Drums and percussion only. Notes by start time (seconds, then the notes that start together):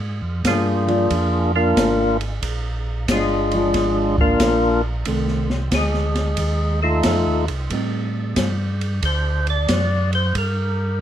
0.44 kick, snare, hi-hat pedal, ride
0.88 ride
1.10 kick, ride
1.77 kick, snare, hi-hat pedal, ride
2.21 ride
2.43 kick, ride
3.08 kick, snare, hi-hat pedal, ride
3.51 ride
3.74 kick, snare, ride
4.18 kick
4.40 kick, snare, hi-hat pedal, ride
5.05 kick, ride
5.28 snare
5.50 snare
5.71 kick, snare, hi-hat pedal, ride
5.94 snare
6.15 snare, ride
6.37 kick, ride
7.03 kick, snare, hi-hat pedal, ride
7.48 ride
7.70 kick, ride
8.36 kick, snare, hi-hat pedal, ride
8.81 ride
9.03 kick, ride
9.47 ride
9.68 kick, snare, hi-hat pedal, ride
10.13 ride
10.35 kick, ride